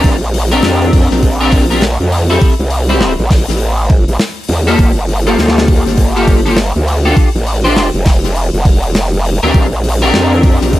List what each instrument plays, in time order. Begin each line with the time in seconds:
Already playing: clean electric guitar C4 D4 G4 A#4
0.04 wobble bass A#1, kick, open hi-hat
0.22 open hi-hat
0.34 open hi-hat
0.52 clean electric guitar C4 D4 G4 A#4, open hi-hat
0.62 wobble bass F2, snare, open hi-hat
0.82 open hi-hat
0.93 kick, open hi-hat
1.11 wobble bass A#1, snare
1.17 open hi-hat
1.23 kick, open hi-hat
1.41 clean electric guitar C4 D4 G4 A#4, open hi-hat
1.52 kick, open hi-hat
1.70 clean electric guitar C4 D4 G4 A#4, open hi-hat
1.81 snare, open hi-hat
2.00 wobble bass F2, open hi-hat
2.12 open hi-hat
2.30 clean electric guitar C4 E4 G4 A4, open hi-hat
2.42 kick, open hi-hat
2.59 wobble bass C2, open hi-hat
2.70 open hi-hat
2.89 clean electric guitar C4 E4 G4 C5, open hi-hat
3.01 snare, open hi-hat
3.19 wobble bass A1, open hi-hat
3.31 kick, snare, open hi-hat
3.48 wobble bass A1, snare, open hi-hat
3.56 snare, open hi-hat
3.77 open hi-hat
3.90 kick
4.08 wobble bass A1, open hi-hat
4.19 snare, open hi-hat
4.44 open hi-hat
4.49 wobble bass E2, open hi-hat
4.67 clean electric guitar A#3 F4 G4 A4, open hi-hat
4.79 wobble bass G1, kick, open hi-hat
4.98 open hi-hat
5.09 open hi-hat
5.27 clean electric guitar A#3 F4 G4 A4, open hi-hat
5.38 wobble bass D2, snare, open hi-hat
5.48 snare
5.57 snare, open hi-hat
5.68 kick, open hi-hat
5.86 wobble bass G1, snare, open hi-hat
5.97 kick, open hi-hat
6.16 clean electric guitar A#3 F4 G4 A4, open hi-hat
6.28 kick, open hi-hat
6.46 clean electric guitar A#3 F4 G4 A4, open hi-hat
6.57 snare, open hi-hat
6.75 wobble bass D2, open hi-hat
6.88 open hi-hat
7.05 clean electric guitar D4 F4 G4 A4, open hi-hat
7.17 kick, open hi-hat
7.35 wobble bass A1, open hi-hat
7.47 open hi-hat
7.64 clean electric guitar D4 F4 G4 C5, open hi-hat
7.76 snare, open hi-hat
7.94 wobble bass F1, open hi-hat
8.02 snare, open hi-hat
8.06 kick, open hi-hat
8.24 snare, open hi-hat
8.35 open hi-hat
8.53 wobble bass F1, open hi-hat
8.65 kick, open hi-hat
8.83 open hi-hat
8.95 snare, open hi-hat
9.14 open hi-hat
9.25 open hi-hat
9.43 wobble bass D2, clean electric guitar C4 D4 G4 A#4, open hi-hat
9.54 wobble bass A#1, kick, open hi-hat
9.73 open hi-hat
9.84 open hi-hat
9.89 open hi-hat
9.93 open hi-hat
9.98 open hi-hat
10.02 clean electric guitar C4 D4 G4 A#4, open hi-hat
10.05 open hi-hat
10.08 open hi-hat
10.11 wobble bass F2, snare, open hi-hat
10.14 open hi-hat
10.33 open hi-hat
10.43 kick, open hi-hat
10.61 wobble bass A#1, snare, open hi-hat
10.73 kick, open hi-hat